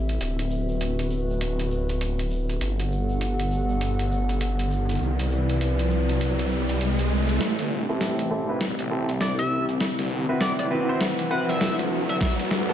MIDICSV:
0, 0, Header, 1, 7, 480
1, 0, Start_track
1, 0, Tempo, 600000
1, 167, Time_signature, 4, 2, 24, 8
1, 10186, End_track
2, 0, Start_track
2, 0, Title_t, "Analog synth lead"
2, 0, Program_c, 0, 81
2, 7365, Note_on_c, 0, 74, 89
2, 7483, Note_off_c, 0, 74, 0
2, 7509, Note_on_c, 0, 76, 91
2, 7720, Note_off_c, 0, 76, 0
2, 8324, Note_on_c, 0, 74, 88
2, 8419, Note_off_c, 0, 74, 0
2, 8472, Note_on_c, 0, 74, 76
2, 8533, Note_off_c, 0, 74, 0
2, 9044, Note_on_c, 0, 78, 96
2, 9163, Note_off_c, 0, 78, 0
2, 9193, Note_on_c, 0, 76, 92
2, 9403, Note_off_c, 0, 76, 0
2, 9672, Note_on_c, 0, 76, 89
2, 9733, Note_off_c, 0, 76, 0
2, 9768, Note_on_c, 0, 76, 76
2, 9861, Note_off_c, 0, 76, 0
2, 10186, End_track
3, 0, Start_track
3, 0, Title_t, "Analog synth pad"
3, 0, Program_c, 1, 89
3, 0, Note_on_c, 1, 60, 74
3, 0, Note_on_c, 1, 67, 67
3, 0, Note_on_c, 1, 69, 69
3, 0, Note_on_c, 1, 76, 83
3, 148, Note_off_c, 1, 67, 0
3, 148, Note_off_c, 1, 69, 0
3, 167, Note_on_c, 1, 66, 70
3, 168, Note_on_c, 1, 71, 68
3, 2055, Note_off_c, 1, 60, 0
3, 2055, Note_off_c, 1, 76, 0
3, 2068, Note_off_c, 1, 66, 0
3, 2068, Note_off_c, 1, 71, 0
3, 2087, Note_on_c, 1, 59, 75
3, 2088, Note_on_c, 1, 67, 68
3, 2088, Note_on_c, 1, 69, 70
3, 2088, Note_on_c, 1, 78, 83
3, 3988, Note_off_c, 1, 59, 0
3, 3988, Note_off_c, 1, 67, 0
3, 3988, Note_off_c, 1, 78, 0
3, 3989, Note_off_c, 1, 69, 0
3, 4006, Note_on_c, 1, 60, 76
3, 4006, Note_on_c, 1, 64, 70
3, 4006, Note_on_c, 1, 71, 70
3, 4007, Note_on_c, 1, 74, 83
3, 5907, Note_off_c, 1, 60, 0
3, 5907, Note_off_c, 1, 64, 0
3, 5908, Note_off_c, 1, 71, 0
3, 5908, Note_off_c, 1, 74, 0
3, 5926, Note_on_c, 1, 57, 76
3, 5926, Note_on_c, 1, 60, 84
3, 5926, Note_on_c, 1, 64, 70
3, 5927, Note_on_c, 1, 67, 70
3, 7827, Note_off_c, 1, 57, 0
3, 7828, Note_off_c, 1, 67, 0
3, 7846, Note_on_c, 1, 71, 78
3, 7846, Note_on_c, 1, 78, 69
3, 9735, Note_off_c, 1, 60, 0
3, 9735, Note_off_c, 1, 64, 0
3, 9748, Note_off_c, 1, 71, 0
3, 9766, Note_on_c, 1, 55, 69
3, 9766, Note_on_c, 1, 71, 88
3, 9767, Note_on_c, 1, 57, 78
3, 10186, Note_off_c, 1, 55, 0
3, 10186, Note_off_c, 1, 57, 0
3, 10186, Note_off_c, 1, 71, 0
3, 10186, Note_off_c, 1, 78, 0
3, 10186, End_track
4, 0, Start_track
4, 0, Title_t, "Grand piano"
4, 0, Program_c, 2, 0
4, 6312, Note_on_c, 2, 60, 80
4, 6312, Note_on_c, 2, 64, 75
4, 6312, Note_on_c, 2, 67, 76
4, 6312, Note_on_c, 2, 69, 87
4, 6624, Note_off_c, 2, 60, 0
4, 6624, Note_off_c, 2, 64, 0
4, 6624, Note_off_c, 2, 67, 0
4, 6624, Note_off_c, 2, 69, 0
4, 6645, Note_on_c, 2, 60, 83
4, 6645, Note_on_c, 2, 64, 77
4, 6645, Note_on_c, 2, 67, 77
4, 6645, Note_on_c, 2, 69, 91
4, 6770, Note_off_c, 2, 69, 0
4, 6771, Note_off_c, 2, 60, 0
4, 6771, Note_off_c, 2, 64, 0
4, 6771, Note_off_c, 2, 67, 0
4, 6790, Note_on_c, 2, 60, 92
4, 6790, Note_on_c, 2, 64, 87
4, 6790, Note_on_c, 2, 67, 86
4, 6790, Note_on_c, 2, 71, 101
4, 6886, Note_off_c, 2, 60, 0
4, 6886, Note_off_c, 2, 64, 0
4, 6886, Note_off_c, 2, 67, 0
4, 6886, Note_off_c, 2, 71, 0
4, 7124, Note_on_c, 2, 60, 80
4, 7124, Note_on_c, 2, 64, 74
4, 7124, Note_on_c, 2, 67, 73
4, 7124, Note_on_c, 2, 69, 86
4, 7272, Note_off_c, 2, 60, 0
4, 7272, Note_off_c, 2, 64, 0
4, 7272, Note_off_c, 2, 69, 0
4, 7273, Note_off_c, 2, 67, 0
4, 8231, Note_on_c, 2, 66, 73
4, 8231, Note_on_c, 2, 71, 91
4, 8232, Note_on_c, 2, 60, 81
4, 8232, Note_on_c, 2, 64, 76
4, 8544, Note_off_c, 2, 60, 0
4, 8544, Note_off_c, 2, 64, 0
4, 8544, Note_off_c, 2, 66, 0
4, 8544, Note_off_c, 2, 71, 0
4, 8565, Note_on_c, 2, 66, 79
4, 8566, Note_on_c, 2, 60, 85
4, 8566, Note_on_c, 2, 64, 75
4, 8566, Note_on_c, 2, 71, 92
4, 8691, Note_off_c, 2, 60, 0
4, 8691, Note_off_c, 2, 64, 0
4, 8691, Note_off_c, 2, 66, 0
4, 8691, Note_off_c, 2, 71, 0
4, 8713, Note_on_c, 2, 60, 91
4, 8713, Note_on_c, 2, 64, 88
4, 8713, Note_on_c, 2, 66, 85
4, 8713, Note_on_c, 2, 72, 105
4, 8807, Note_off_c, 2, 64, 0
4, 8808, Note_off_c, 2, 60, 0
4, 8808, Note_off_c, 2, 66, 0
4, 8808, Note_off_c, 2, 72, 0
4, 9045, Note_on_c, 2, 60, 83
4, 9045, Note_on_c, 2, 71, 92
4, 9046, Note_on_c, 2, 64, 77
4, 9046, Note_on_c, 2, 66, 76
4, 9193, Note_off_c, 2, 60, 0
4, 9193, Note_off_c, 2, 64, 0
4, 9193, Note_off_c, 2, 66, 0
4, 9193, Note_off_c, 2, 71, 0
4, 10152, Note_on_c, 2, 59, 85
4, 10152, Note_on_c, 2, 66, 78
4, 10152, Note_on_c, 2, 69, 93
4, 10153, Note_on_c, 2, 67, 77
4, 10186, Note_off_c, 2, 59, 0
4, 10186, Note_off_c, 2, 66, 0
4, 10186, Note_off_c, 2, 67, 0
4, 10186, Note_off_c, 2, 69, 0
4, 10186, End_track
5, 0, Start_track
5, 0, Title_t, "Detuned saw bass"
5, 0, Program_c, 3, 39
5, 0, Note_on_c, 3, 33, 89
5, 148, Note_off_c, 3, 33, 0
5, 166, Note_on_c, 3, 26, 89
5, 2068, Note_off_c, 3, 26, 0
5, 2085, Note_on_c, 3, 31, 86
5, 3987, Note_off_c, 3, 31, 0
5, 4007, Note_on_c, 3, 36, 92
5, 5909, Note_off_c, 3, 36, 0
5, 5926, Note_on_c, 3, 33, 98
5, 6050, Note_off_c, 3, 33, 0
5, 6070, Note_on_c, 3, 31, 96
5, 6289, Note_off_c, 3, 31, 0
5, 6310, Note_on_c, 3, 33, 92
5, 7008, Note_off_c, 3, 33, 0
5, 7031, Note_on_c, 3, 33, 95
5, 7249, Note_off_c, 3, 33, 0
5, 7269, Note_on_c, 3, 36, 93
5, 7830, Note_off_c, 3, 36, 0
5, 7990, Note_on_c, 3, 36, 95
5, 8208, Note_off_c, 3, 36, 0
5, 8470, Note_on_c, 3, 30, 97
5, 8688, Note_off_c, 3, 30, 0
5, 9190, Note_on_c, 3, 36, 97
5, 9409, Note_off_c, 3, 36, 0
5, 9430, Note_on_c, 3, 38, 94
5, 9510, Note_off_c, 3, 38, 0
5, 9524, Note_on_c, 3, 38, 94
5, 9751, Note_off_c, 3, 38, 0
5, 9766, Note_on_c, 3, 31, 99
5, 9889, Note_off_c, 3, 31, 0
5, 9909, Note_on_c, 3, 38, 96
5, 10128, Note_off_c, 3, 38, 0
5, 10150, Note_on_c, 3, 31, 96
5, 10186, Note_off_c, 3, 31, 0
5, 10186, End_track
6, 0, Start_track
6, 0, Title_t, "Riser"
6, 0, Program_c, 4, 103
6, 2087, Note_on_c, 4, 60, 70
6, 5926, Note_off_c, 4, 60, 0
6, 5926, Note_on_c, 4, 60, 74
6, 10186, Note_off_c, 4, 60, 0
6, 10186, End_track
7, 0, Start_track
7, 0, Title_t, "Drums"
7, 71, Note_on_c, 9, 82, 44
7, 74, Note_on_c, 9, 42, 33
7, 151, Note_off_c, 9, 82, 0
7, 154, Note_off_c, 9, 42, 0
7, 165, Note_on_c, 9, 82, 35
7, 166, Note_on_c, 9, 42, 68
7, 245, Note_off_c, 9, 82, 0
7, 246, Note_off_c, 9, 42, 0
7, 314, Note_on_c, 9, 42, 46
7, 394, Note_off_c, 9, 42, 0
7, 404, Note_on_c, 9, 82, 84
7, 484, Note_off_c, 9, 82, 0
7, 551, Note_on_c, 9, 82, 50
7, 631, Note_off_c, 9, 82, 0
7, 642, Note_on_c, 9, 82, 36
7, 647, Note_on_c, 9, 42, 67
7, 722, Note_off_c, 9, 82, 0
7, 727, Note_off_c, 9, 42, 0
7, 793, Note_on_c, 9, 42, 45
7, 873, Note_off_c, 9, 42, 0
7, 882, Note_on_c, 9, 82, 88
7, 962, Note_off_c, 9, 82, 0
7, 1040, Note_on_c, 9, 82, 48
7, 1120, Note_off_c, 9, 82, 0
7, 1125, Note_on_c, 9, 82, 33
7, 1129, Note_on_c, 9, 42, 69
7, 1205, Note_off_c, 9, 82, 0
7, 1209, Note_off_c, 9, 42, 0
7, 1275, Note_on_c, 9, 42, 47
7, 1355, Note_off_c, 9, 42, 0
7, 1366, Note_on_c, 9, 82, 83
7, 1446, Note_off_c, 9, 82, 0
7, 1510, Note_on_c, 9, 82, 45
7, 1515, Note_on_c, 9, 42, 33
7, 1590, Note_off_c, 9, 82, 0
7, 1595, Note_off_c, 9, 42, 0
7, 1606, Note_on_c, 9, 82, 38
7, 1609, Note_on_c, 9, 42, 68
7, 1686, Note_off_c, 9, 82, 0
7, 1689, Note_off_c, 9, 42, 0
7, 1755, Note_on_c, 9, 42, 45
7, 1835, Note_off_c, 9, 42, 0
7, 1843, Note_on_c, 9, 82, 85
7, 1923, Note_off_c, 9, 82, 0
7, 1996, Note_on_c, 9, 42, 34
7, 1996, Note_on_c, 9, 82, 44
7, 2076, Note_off_c, 9, 42, 0
7, 2076, Note_off_c, 9, 82, 0
7, 2089, Note_on_c, 9, 42, 71
7, 2090, Note_on_c, 9, 82, 36
7, 2169, Note_off_c, 9, 42, 0
7, 2170, Note_off_c, 9, 82, 0
7, 2236, Note_on_c, 9, 42, 47
7, 2316, Note_off_c, 9, 42, 0
7, 2331, Note_on_c, 9, 82, 79
7, 2411, Note_off_c, 9, 82, 0
7, 2473, Note_on_c, 9, 82, 50
7, 2553, Note_off_c, 9, 82, 0
7, 2569, Note_on_c, 9, 42, 70
7, 2570, Note_on_c, 9, 82, 35
7, 2649, Note_off_c, 9, 42, 0
7, 2650, Note_off_c, 9, 82, 0
7, 2717, Note_on_c, 9, 42, 47
7, 2797, Note_off_c, 9, 42, 0
7, 2810, Note_on_c, 9, 82, 83
7, 2890, Note_off_c, 9, 82, 0
7, 2952, Note_on_c, 9, 82, 48
7, 3032, Note_off_c, 9, 82, 0
7, 3044, Note_on_c, 9, 82, 33
7, 3049, Note_on_c, 9, 42, 70
7, 3124, Note_off_c, 9, 82, 0
7, 3129, Note_off_c, 9, 42, 0
7, 3195, Note_on_c, 9, 42, 49
7, 3275, Note_off_c, 9, 42, 0
7, 3289, Note_on_c, 9, 82, 74
7, 3369, Note_off_c, 9, 82, 0
7, 3433, Note_on_c, 9, 82, 50
7, 3434, Note_on_c, 9, 42, 35
7, 3513, Note_off_c, 9, 82, 0
7, 3514, Note_off_c, 9, 42, 0
7, 3522, Note_on_c, 9, 82, 32
7, 3527, Note_on_c, 9, 42, 72
7, 3602, Note_off_c, 9, 82, 0
7, 3607, Note_off_c, 9, 42, 0
7, 3674, Note_on_c, 9, 42, 48
7, 3754, Note_off_c, 9, 42, 0
7, 3765, Note_on_c, 9, 82, 85
7, 3845, Note_off_c, 9, 82, 0
7, 3914, Note_on_c, 9, 42, 32
7, 3915, Note_on_c, 9, 82, 46
7, 3930, Note_off_c, 9, 42, 0
7, 3930, Note_on_c, 9, 42, 26
7, 3962, Note_off_c, 9, 42, 0
7, 3962, Note_on_c, 9, 42, 18
7, 3977, Note_off_c, 9, 42, 0
7, 3977, Note_on_c, 9, 42, 15
7, 3994, Note_off_c, 9, 42, 0
7, 3994, Note_on_c, 9, 42, 12
7, 3995, Note_off_c, 9, 82, 0
7, 4012, Note_on_c, 9, 82, 41
7, 4074, Note_off_c, 9, 42, 0
7, 4092, Note_off_c, 9, 82, 0
7, 4155, Note_on_c, 9, 42, 75
7, 4235, Note_off_c, 9, 42, 0
7, 4244, Note_on_c, 9, 82, 86
7, 4324, Note_off_c, 9, 82, 0
7, 4396, Note_on_c, 9, 42, 36
7, 4399, Note_on_c, 9, 82, 51
7, 4476, Note_off_c, 9, 42, 0
7, 4479, Note_off_c, 9, 82, 0
7, 4488, Note_on_c, 9, 82, 38
7, 4489, Note_on_c, 9, 42, 76
7, 4568, Note_off_c, 9, 82, 0
7, 4569, Note_off_c, 9, 42, 0
7, 4634, Note_on_c, 9, 42, 51
7, 4714, Note_off_c, 9, 42, 0
7, 4724, Note_on_c, 9, 82, 78
7, 4804, Note_off_c, 9, 82, 0
7, 4874, Note_on_c, 9, 82, 48
7, 4875, Note_on_c, 9, 42, 34
7, 4954, Note_off_c, 9, 82, 0
7, 4955, Note_off_c, 9, 42, 0
7, 4958, Note_on_c, 9, 82, 35
7, 4969, Note_on_c, 9, 42, 74
7, 5038, Note_off_c, 9, 82, 0
7, 5049, Note_off_c, 9, 42, 0
7, 5115, Note_on_c, 9, 42, 49
7, 5195, Note_off_c, 9, 42, 0
7, 5200, Note_on_c, 9, 82, 80
7, 5280, Note_off_c, 9, 82, 0
7, 5350, Note_on_c, 9, 82, 47
7, 5355, Note_on_c, 9, 42, 36
7, 5430, Note_off_c, 9, 82, 0
7, 5435, Note_off_c, 9, 42, 0
7, 5442, Note_on_c, 9, 82, 35
7, 5448, Note_on_c, 9, 42, 77
7, 5522, Note_off_c, 9, 82, 0
7, 5528, Note_off_c, 9, 42, 0
7, 5593, Note_on_c, 9, 42, 48
7, 5673, Note_off_c, 9, 42, 0
7, 5687, Note_on_c, 9, 82, 85
7, 5767, Note_off_c, 9, 82, 0
7, 5829, Note_on_c, 9, 82, 50
7, 5832, Note_on_c, 9, 42, 36
7, 5909, Note_off_c, 9, 82, 0
7, 5912, Note_off_c, 9, 42, 0
7, 5926, Note_on_c, 9, 38, 47
7, 5926, Note_on_c, 9, 42, 76
7, 6006, Note_off_c, 9, 38, 0
7, 6006, Note_off_c, 9, 42, 0
7, 6072, Note_on_c, 9, 42, 52
7, 6152, Note_off_c, 9, 42, 0
7, 6406, Note_on_c, 9, 38, 48
7, 6406, Note_on_c, 9, 42, 79
7, 6486, Note_off_c, 9, 38, 0
7, 6486, Note_off_c, 9, 42, 0
7, 6553, Note_on_c, 9, 42, 51
7, 6633, Note_off_c, 9, 42, 0
7, 6886, Note_on_c, 9, 38, 50
7, 6886, Note_on_c, 9, 42, 77
7, 6966, Note_off_c, 9, 38, 0
7, 6966, Note_off_c, 9, 42, 0
7, 7031, Note_on_c, 9, 42, 52
7, 7111, Note_off_c, 9, 42, 0
7, 7271, Note_on_c, 9, 42, 36
7, 7351, Note_off_c, 9, 42, 0
7, 7365, Note_on_c, 9, 38, 52
7, 7365, Note_on_c, 9, 42, 77
7, 7445, Note_off_c, 9, 38, 0
7, 7445, Note_off_c, 9, 42, 0
7, 7511, Note_on_c, 9, 42, 53
7, 7591, Note_off_c, 9, 42, 0
7, 7751, Note_on_c, 9, 42, 38
7, 7831, Note_off_c, 9, 42, 0
7, 7844, Note_on_c, 9, 38, 55
7, 7844, Note_on_c, 9, 42, 80
7, 7924, Note_off_c, 9, 38, 0
7, 7924, Note_off_c, 9, 42, 0
7, 7991, Note_on_c, 9, 42, 53
7, 8071, Note_off_c, 9, 42, 0
7, 8325, Note_on_c, 9, 38, 61
7, 8325, Note_on_c, 9, 42, 80
7, 8405, Note_off_c, 9, 38, 0
7, 8405, Note_off_c, 9, 42, 0
7, 8472, Note_on_c, 9, 42, 53
7, 8552, Note_off_c, 9, 42, 0
7, 8805, Note_on_c, 9, 38, 65
7, 8805, Note_on_c, 9, 42, 81
7, 8885, Note_off_c, 9, 38, 0
7, 8885, Note_off_c, 9, 42, 0
7, 8952, Note_on_c, 9, 42, 55
7, 9032, Note_off_c, 9, 42, 0
7, 9194, Note_on_c, 9, 42, 38
7, 9274, Note_off_c, 9, 42, 0
7, 9287, Note_on_c, 9, 38, 68
7, 9287, Note_on_c, 9, 42, 80
7, 9367, Note_off_c, 9, 38, 0
7, 9367, Note_off_c, 9, 42, 0
7, 9434, Note_on_c, 9, 42, 54
7, 9514, Note_off_c, 9, 42, 0
7, 9675, Note_on_c, 9, 42, 40
7, 9755, Note_off_c, 9, 42, 0
7, 9766, Note_on_c, 9, 36, 95
7, 9769, Note_on_c, 9, 38, 75
7, 9769, Note_on_c, 9, 42, 81
7, 9846, Note_off_c, 9, 36, 0
7, 9849, Note_off_c, 9, 38, 0
7, 9849, Note_off_c, 9, 42, 0
7, 9915, Note_on_c, 9, 42, 54
7, 9995, Note_off_c, 9, 42, 0
7, 10009, Note_on_c, 9, 38, 73
7, 10089, Note_off_c, 9, 38, 0
7, 10186, End_track
0, 0, End_of_file